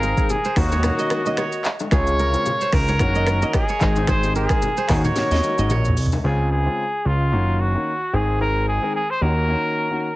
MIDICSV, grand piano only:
0, 0, Header, 1, 2, 480
1, 0, Start_track
1, 0, Key_signature, -5, "major"
1, 0, Tempo, 540541
1, 1703, Time_signature, 4, 2, 24, 8
1, 9021, End_track
2, 0, Start_track
2, 0, Title_t, "Grand piano"
2, 0, Program_c, 0, 0
2, 0, Note_on_c, 0, 51, 90
2, 0, Note_on_c, 0, 56, 84
2, 0, Note_on_c, 0, 60, 89
2, 0, Note_on_c, 0, 68, 108
2, 123, Note_off_c, 0, 51, 0
2, 124, Note_off_c, 0, 56, 0
2, 125, Note_off_c, 0, 60, 0
2, 125, Note_off_c, 0, 68, 0
2, 153, Note_on_c, 0, 51, 80
2, 155, Note_on_c, 0, 56, 73
2, 157, Note_on_c, 0, 60, 69
2, 159, Note_on_c, 0, 68, 86
2, 294, Note_off_c, 0, 51, 0
2, 295, Note_off_c, 0, 56, 0
2, 296, Note_off_c, 0, 60, 0
2, 297, Note_off_c, 0, 68, 0
2, 501, Note_on_c, 0, 51, 99
2, 503, Note_on_c, 0, 58, 88
2, 504, Note_on_c, 0, 61, 86
2, 506, Note_on_c, 0, 66, 108
2, 725, Note_off_c, 0, 51, 0
2, 726, Note_off_c, 0, 58, 0
2, 727, Note_off_c, 0, 61, 0
2, 728, Note_off_c, 0, 66, 0
2, 741, Note_on_c, 0, 51, 95
2, 742, Note_on_c, 0, 58, 86
2, 744, Note_on_c, 0, 61, 88
2, 746, Note_on_c, 0, 66, 105
2, 1082, Note_off_c, 0, 51, 0
2, 1083, Note_off_c, 0, 58, 0
2, 1084, Note_off_c, 0, 61, 0
2, 1085, Note_off_c, 0, 66, 0
2, 1113, Note_on_c, 0, 51, 79
2, 1115, Note_on_c, 0, 58, 72
2, 1116, Note_on_c, 0, 61, 72
2, 1118, Note_on_c, 0, 66, 86
2, 1254, Note_off_c, 0, 51, 0
2, 1255, Note_off_c, 0, 58, 0
2, 1256, Note_off_c, 0, 61, 0
2, 1256, Note_off_c, 0, 66, 0
2, 1701, Note_on_c, 0, 49, 96
2, 1703, Note_on_c, 0, 56, 87
2, 1705, Note_on_c, 0, 48, 83
2, 1707, Note_on_c, 0, 65, 104
2, 2043, Note_off_c, 0, 49, 0
2, 2044, Note_off_c, 0, 56, 0
2, 2045, Note_off_c, 0, 48, 0
2, 2045, Note_off_c, 0, 65, 0
2, 2074, Note_on_c, 0, 49, 78
2, 2075, Note_on_c, 0, 56, 73
2, 2077, Note_on_c, 0, 60, 73
2, 2079, Note_on_c, 0, 65, 88
2, 2214, Note_off_c, 0, 49, 0
2, 2215, Note_off_c, 0, 56, 0
2, 2216, Note_off_c, 0, 60, 0
2, 2217, Note_off_c, 0, 65, 0
2, 2662, Note_on_c, 0, 51, 96
2, 2664, Note_on_c, 0, 58, 89
2, 2665, Note_on_c, 0, 61, 89
2, 2667, Note_on_c, 0, 66, 108
2, 3003, Note_off_c, 0, 51, 0
2, 3004, Note_off_c, 0, 58, 0
2, 3005, Note_off_c, 0, 61, 0
2, 3006, Note_off_c, 0, 66, 0
2, 3033, Note_on_c, 0, 51, 76
2, 3035, Note_on_c, 0, 58, 73
2, 3037, Note_on_c, 0, 61, 70
2, 3039, Note_on_c, 0, 66, 82
2, 3174, Note_off_c, 0, 51, 0
2, 3175, Note_off_c, 0, 58, 0
2, 3176, Note_off_c, 0, 61, 0
2, 3177, Note_off_c, 0, 66, 0
2, 3382, Note_on_c, 0, 51, 91
2, 3384, Note_on_c, 0, 56, 90
2, 3385, Note_on_c, 0, 60, 88
2, 3387, Note_on_c, 0, 68, 105
2, 3606, Note_off_c, 0, 51, 0
2, 3606, Note_off_c, 0, 56, 0
2, 3607, Note_off_c, 0, 60, 0
2, 3608, Note_off_c, 0, 68, 0
2, 3622, Note_on_c, 0, 51, 92
2, 3624, Note_on_c, 0, 56, 84
2, 3625, Note_on_c, 0, 60, 88
2, 3627, Note_on_c, 0, 68, 103
2, 3963, Note_off_c, 0, 51, 0
2, 3964, Note_off_c, 0, 56, 0
2, 3965, Note_off_c, 0, 60, 0
2, 3966, Note_off_c, 0, 68, 0
2, 3994, Note_on_c, 0, 51, 79
2, 3995, Note_on_c, 0, 56, 72
2, 3998, Note_on_c, 0, 60, 71
2, 3999, Note_on_c, 0, 68, 83
2, 4134, Note_off_c, 0, 51, 0
2, 4135, Note_off_c, 0, 56, 0
2, 4136, Note_off_c, 0, 60, 0
2, 4137, Note_off_c, 0, 68, 0
2, 4342, Note_on_c, 0, 51, 92
2, 4343, Note_on_c, 0, 58, 89
2, 4345, Note_on_c, 0, 61, 85
2, 4347, Note_on_c, 0, 66, 105
2, 4565, Note_off_c, 0, 51, 0
2, 4566, Note_off_c, 0, 58, 0
2, 4567, Note_off_c, 0, 61, 0
2, 4568, Note_off_c, 0, 66, 0
2, 4581, Note_on_c, 0, 51, 94
2, 4583, Note_on_c, 0, 58, 84
2, 4585, Note_on_c, 0, 61, 89
2, 4586, Note_on_c, 0, 66, 102
2, 4923, Note_off_c, 0, 51, 0
2, 4923, Note_off_c, 0, 58, 0
2, 4924, Note_off_c, 0, 61, 0
2, 4925, Note_off_c, 0, 66, 0
2, 4953, Note_on_c, 0, 51, 78
2, 4955, Note_on_c, 0, 58, 70
2, 4957, Note_on_c, 0, 61, 73
2, 4958, Note_on_c, 0, 66, 85
2, 5094, Note_off_c, 0, 51, 0
2, 5095, Note_off_c, 0, 58, 0
2, 5096, Note_off_c, 0, 61, 0
2, 5097, Note_off_c, 0, 66, 0
2, 5542, Note_on_c, 0, 49, 84
2, 5543, Note_on_c, 0, 56, 78
2, 5545, Note_on_c, 0, 60, 78
2, 5547, Note_on_c, 0, 65, 92
2, 5883, Note_off_c, 0, 49, 0
2, 5884, Note_off_c, 0, 56, 0
2, 5885, Note_off_c, 0, 60, 0
2, 5886, Note_off_c, 0, 65, 0
2, 5914, Note_on_c, 0, 49, 70
2, 5915, Note_on_c, 0, 56, 66
2, 5917, Note_on_c, 0, 60, 66
2, 5919, Note_on_c, 0, 65, 78
2, 6054, Note_off_c, 0, 49, 0
2, 6055, Note_off_c, 0, 56, 0
2, 6056, Note_off_c, 0, 60, 0
2, 6057, Note_off_c, 0, 65, 0
2, 6501, Note_on_c, 0, 51, 88
2, 6503, Note_on_c, 0, 58, 82
2, 6505, Note_on_c, 0, 61, 78
2, 6507, Note_on_c, 0, 66, 95
2, 6843, Note_off_c, 0, 51, 0
2, 6844, Note_off_c, 0, 58, 0
2, 6845, Note_off_c, 0, 61, 0
2, 6845, Note_off_c, 0, 66, 0
2, 6873, Note_on_c, 0, 51, 71
2, 6875, Note_on_c, 0, 58, 66
2, 6876, Note_on_c, 0, 61, 64
2, 6878, Note_on_c, 0, 66, 75
2, 7014, Note_off_c, 0, 51, 0
2, 7015, Note_off_c, 0, 58, 0
2, 7016, Note_off_c, 0, 61, 0
2, 7017, Note_off_c, 0, 66, 0
2, 7221, Note_on_c, 0, 51, 88
2, 7223, Note_on_c, 0, 56, 80
2, 7224, Note_on_c, 0, 60, 74
2, 7226, Note_on_c, 0, 68, 94
2, 7445, Note_off_c, 0, 51, 0
2, 7446, Note_off_c, 0, 56, 0
2, 7447, Note_off_c, 0, 60, 0
2, 7448, Note_off_c, 0, 68, 0
2, 7461, Note_on_c, 0, 51, 85
2, 7462, Note_on_c, 0, 56, 76
2, 7464, Note_on_c, 0, 60, 76
2, 7466, Note_on_c, 0, 68, 94
2, 7802, Note_off_c, 0, 51, 0
2, 7803, Note_off_c, 0, 56, 0
2, 7804, Note_off_c, 0, 60, 0
2, 7805, Note_off_c, 0, 68, 0
2, 7833, Note_on_c, 0, 51, 73
2, 7835, Note_on_c, 0, 56, 62
2, 7836, Note_on_c, 0, 60, 67
2, 7838, Note_on_c, 0, 68, 78
2, 7974, Note_off_c, 0, 51, 0
2, 7975, Note_off_c, 0, 56, 0
2, 7976, Note_off_c, 0, 60, 0
2, 7977, Note_off_c, 0, 68, 0
2, 8181, Note_on_c, 0, 51, 88
2, 8183, Note_on_c, 0, 58, 77
2, 8185, Note_on_c, 0, 61, 81
2, 8187, Note_on_c, 0, 66, 101
2, 8405, Note_off_c, 0, 51, 0
2, 8406, Note_off_c, 0, 58, 0
2, 8407, Note_off_c, 0, 61, 0
2, 8408, Note_off_c, 0, 66, 0
2, 8421, Note_on_c, 0, 51, 91
2, 8423, Note_on_c, 0, 58, 80
2, 8424, Note_on_c, 0, 61, 80
2, 8426, Note_on_c, 0, 66, 96
2, 8763, Note_off_c, 0, 51, 0
2, 8763, Note_off_c, 0, 58, 0
2, 8764, Note_off_c, 0, 61, 0
2, 8765, Note_off_c, 0, 66, 0
2, 8793, Note_on_c, 0, 51, 69
2, 8794, Note_on_c, 0, 58, 62
2, 8797, Note_on_c, 0, 61, 61
2, 8798, Note_on_c, 0, 66, 77
2, 8934, Note_off_c, 0, 51, 0
2, 8935, Note_off_c, 0, 58, 0
2, 8936, Note_off_c, 0, 61, 0
2, 8937, Note_off_c, 0, 66, 0
2, 9021, End_track
0, 0, End_of_file